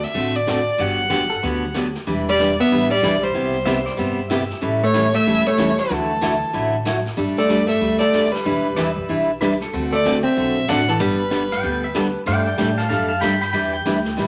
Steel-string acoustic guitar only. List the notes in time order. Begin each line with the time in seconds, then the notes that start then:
0.14 D3 A3 C4 F#4 A4
0.47 D3 A3 C4 F#4 A4
0.78 D3 F#3 B3 D4 G4
1.10 D3 F#3 B3 D4 G4
1.43 D3 F#3 B3 D4 G4
1.74 D3 F#3 B3 D4 G4
2.07 E3 G3 D4 E4 B4
2.39 E3 G3 D4 E4 B4
2.71 E3 G3 D4 E4 B4
3.03 E3 G3 D4 E4 B4
3.34 C3 G3 B3 E4 G4
3.66 C3 G3 B3 E4 G4
3.97 C3 G3 B3 E4 G4
4.30 C3 G3 B3 E4 G4
4.61 E3 G3 C#4 E4 A4
4.94 E3 G3 C#4 E4 A4
5.26 E3 G3 C#4 E4 A4
5.58 E3 G3 C#4 E4 A4
5.90 D3 F#3 A3 E4 F#4
6.21 D3 F#3 A3 E4 F#4
6.53 D3 F#3 A3 E4 F#4
6.85 D3 F#3 A3 E4 F#4
7.17 G3 A3 D4 A4
7.49 G3 A3 D4 A4
7.81 G3 A3 D4 A4
8.13 G3 A3 D4 A4
8.45 E3 G3 D4 E4 B4
8.76 E3 G3 D4 E4 B4
9.09 E3 G3 D4 E4 B4
9.41 E3 G3 D4 E4 B4
9.73 D3 A3 C4 F#4 A4
10.06 D3 A3 C4 F#4 A4
10.37 D3 A3 C4 F#4 A4
10.68 D3 A3 C4 F#4 A4
10.99 G3 B3 D4 A4
11.30 G3 B3 D4 A4
11.63 G3 B3 D4 A4
11.95 G3 B3 D4 A4
12.26 G3 A3 D4 A4
12.58 G3 A3 D4 A4
12.90 G3 A3 D4 A4
13.21 G3 A3 D4 A4
13.53 E3 G3 D4 E4 B4
13.86 E3 G3 D4 E4 B4
14.17 E3 G3 D4 E4 B4